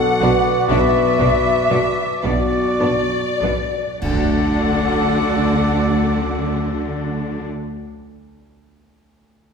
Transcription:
0.00 0.68 B1 medium
0.00 0.68 B2 loud
0.00 0.22 F#4 medium
0.00 2.21 F#4 loud
0.00 0.23 A4 loud
0.00 0.22 B4 medium
0.00 0.23 D5 medium
0.00 2.21 D5 loud
0.00 0.70 F#5 loud
0.00 0.71 F#5 loud
0.20 0.30 B1 loud
0.20 0.30 B2 loud
0.20 0.28 B3 medium
0.20 0.28 D4 medium
0.20 0.29 F#4 medium
0.20 0.66 F#4 medium
0.20 0.66 B4 medium
0.20 2.07 B4 loud
0.20 0.30 D5 medium
0.20 0.66 D5 medium
0.68 1.17 B1 loud
0.68 0.77 B1 loud
0.68 1.17 B2 medium
0.68 0.78 B2 loud
0.68 0.78 B3 loud
0.68 0.77 D4 loud
0.68 0.77 F#4 loud
0.68 0.77 D5 medium
0.68 2.24 E5 loud
0.68 2.22 E5 loud
1.18 1.27 B1 loud
1.18 1.28 B2 loud
1.18 1.27 B3 medium
1.18 1.27 D4 medium
1.18 1.66 F#4 medium
1.18 1.27 F#4 medium
1.18 1.66 B4 medium
1.18 1.27 D5 medium
1.18 1.67 D5 medium
1.69 1.79 B1 medium
1.69 1.78 B2 loud
1.69 1.79 B3 medium
1.69 1.80 D4 medium
1.69 1.78 F#4 medium
1.69 2.21 F#4 medium
1.69 2.21 B4 medium
1.69 1.77 D5 medium
1.69 2.21 D5 medium
2.22 2.80 B1 medium
2.22 2.33 B1 loud
2.22 2.80 B2 medium
2.22 2.32 B2 loud
2.22 2.33 B3 medium
2.22 2.33 D4 medium
2.22 2.31 F#4 medium
2.22 3.10 F#4 medium
2.22 3.57 F#4 loud
2.22 2.30 D5 medium
2.22 3.56 D5 loud
2.22 4.03 D5 loud
2.22 4.00 D5 loud
2.79 2.89 B1 medium
2.79 2.90 B2 medium
2.79 2.87 B3 medium
2.79 2.88 D4 medium
2.79 3.38 F#4 medium
2.79 2.90 F#4 medium
2.79 3.38 B4 medium
2.79 2.90 D5 medium
2.79 3.39 D5 medium
3.40 3.50 B1 medium
3.40 3.50 B2 medium
3.40 3.49 B3 medium
3.40 3.48 D4 medium
3.40 3.99 F#4 medium
3.40 3.51 F#4 medium
3.40 4.00 B4 medium
3.40 3.51 D5 medium
3.40 4.00 D5 medium
4.01 7.45 D2 medium
4.01 7.47 D2 medium
4.01 7.46 D3 medium
4.01 7.46 F#3 medium
4.01 7.44 A3 medium
4.01 7.44 D4 medium
4.01 7.46 F#4 medium
4.01 7.48 F#4 medium
4.01 7.47 A4 medium
4.01 7.45 D5 loud
4.01 7.46 D5 medium
4.01 7.45 F#5 loud
4.01 concert bass drum medium
4.01 crash medium
4.05 7.48 D5 medium
4.11 7.54 D3 medium
4.18 7.61 F#4 medium
4.25 7.68 A4 medium
4.32 7.75 D5 medium
4.39 7.82 A5 medium

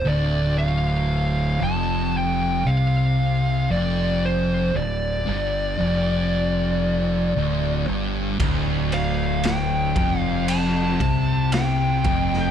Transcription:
0.05 1.58 D1 loud
0.05 1.60 D2 loud
0.05 0.58 D5 loud
0.58 1.65 F5 medium
1.61 2.62 F1 loud
1.61 2.64 F2 loud
1.61 2.16 A5 medium
2.17 2.69 G5 loud
2.66 3.67 C2 medium
2.66 3.69 C3 loud
2.66 3.71 F5 medium
3.70 4.71 F1 medium
3.70 4.73 F2 loud
3.70 4.25 D5 medium
4.25 4.73 C5 medium
4.74 5.24 D1 medium
4.74 5.16 D2 medium
4.74 7.85 D5 medium
5.26 5.76 G1 loud
5.26 5.77 G2 loud
5.78 7.32 F1 loud
5.78 7.34 F2 loud
7.35 7.85 D1 medium
7.35 7.86 D2 medium
7.88 8.37 G1 medium
7.88 8.38 G2 loud
8.40 9.93 D1 loud
8.40 9.95 D2 loud
8.40 kick loud
8.40 ride loud
8.92 9.47 F5 medium
8.92 ride medium
9.43 10.21 G5 loud
9.43 snare loud
9.43 ride medium
9.96 10.97 F1 medium
9.96 11.00 F2 medium
9.96 kick loud
9.96 ride medium
10.21 10.48 F5 loud
10.48 11.53 A5 loud
10.48 ride loud
11.00 12.01 C2 loud
11.00 12.04 C3 medium
11.00 kick loud
11.00 ride medium
11.52 12.51 G5 medium
11.52 snare loud
11.52 ride loud
12.04 12.51 F1 medium
12.04 12.51 F2 loud
12.04 kick loud
12.04 ride medium
12.33 snare soft

